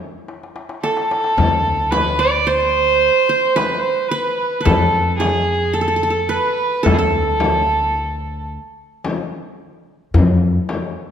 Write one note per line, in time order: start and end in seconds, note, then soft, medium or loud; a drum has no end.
0.28 darbuka tek soft
0.43 darbuka ka soft
0.56 darbuka tek medium
0.69 darbuka ka medium
0.83 2.01 A4 medium
0.83 1.92 A4 medium
0.83 darbuka tek medium
0.97 darbuka ka medium
1.11 darbuka tek medium
1.24 darbuka ka medium
1.37 3.08 D2 medium
1.37 darbuka dum loud
1.37 frame drum medium
1.91 2.21 B4 medium
1.91 2.53 B4 medium
1.91 darbuka tek medium
1.91 frame drum medium
2.19 3.17 D5 medium
2.19 2.49 D5 medium
2.47 3.29 C5 medium
2.47 3.58 C5 loud
3.29 3.62 C5 medium
3.56 4.11 B4 medium
3.56 3.81 B4 medium
3.56 darbuka tek medium
3.56 frame drum medium
3.79 4.10 C5 medium
4.09 4.64 B4 medium
4.09 4.60 B4 medium
4.61 5.16 A4 medium
4.61 5.70 B4 medium
4.65 6.36 F2 medium
4.65 5.26 A4 medium
4.65 frame drum medium
4.65 darbuka dum loud
5.18 5.75 G#4 medium
5.18 5.79 G#4 medium
5.18 darbuka tek medium
5.18 frame drum medium
5.73 6.30 A4 medium
5.73 5.81 A4 medium
5.73 darbuka ka soft
5.81 5.87 A4 soft
5.88 5.96 A4 medium
5.96 6.03 A4 soft
6.03 6.10 A4 medium
6.10 6.83 A4 soft
6.28 6.86 B4 medium
6.28 7.38 B4 medium
6.83 8.56 D2 medium
6.83 6.98 A4 medium
6.83 6.95 A4 medium
6.83 darbuka dum loud
6.83 frame drum medium
6.94 7.00 G#4 medium
6.98 8.49 A4 medium
6.98 8.45 A4 medium
7.40 darbuka tek medium
7.40 frame drum medium
9.04 darbuka tek medium
9.04 frame drum medium
10.14 10.57 F2 medium
10.14 frame drum medium
10.14 darbuka dum medium
10.69 darbuka tek medium
10.69 frame drum medium